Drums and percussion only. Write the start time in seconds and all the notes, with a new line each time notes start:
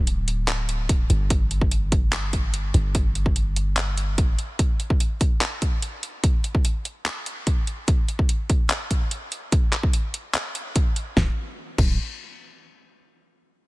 0.07 closed hi-hat
0.28 closed hi-hat
0.48 clap, closed hi-hat
0.69 closed hi-hat
0.89 kick, closed hi-hat
1.10 closed hi-hat
1.30 kick, closed hi-hat
1.51 closed hi-hat
1.61 kick
1.71 closed hi-hat
1.92 kick, closed hi-hat
2.13 clap, closed hi-hat
2.33 kick, closed hi-hat
2.54 closed hi-hat
2.74 closed hi-hat
2.95 kick, closed hi-hat
3.15 closed hi-hat
3.26 kick
3.36 closed hi-hat
3.56 closed hi-hat
3.77 clap, closed hi-hat
3.97 closed hi-hat
4.18 kick, closed hi-hat
4.39 closed hi-hat
4.59 kick, closed hi-hat
4.80 closed hi-hat
4.90 kick
5.00 closed hi-hat
5.21 kick, closed hi-hat
5.41 clap, closed hi-hat
5.62 kick, closed hi-hat
5.82 closed hi-hat
6.03 closed hi-hat
6.24 kick, closed hi-hat
6.44 closed hi-hat
6.55 kick
6.65 closed hi-hat
6.85 closed hi-hat
7.06 clap, closed hi-hat
7.26 closed hi-hat
7.47 kick, closed hi-hat
7.67 closed hi-hat
7.88 kick, closed hi-hat
8.08 closed hi-hat
8.19 kick
8.29 closed hi-hat
8.50 kick, closed hi-hat
8.70 clap, closed hi-hat
8.91 kick, closed hi-hat
9.11 closed hi-hat
9.32 closed hi-hat
9.52 kick, closed hi-hat
9.73 clap, closed hi-hat
9.83 kick
9.93 closed hi-hat
10.14 closed hi-hat
10.35 clap, closed hi-hat
10.55 closed hi-hat
10.76 kick, closed hi-hat
10.96 closed hi-hat
11.17 kick, snare
11.78 kick, crash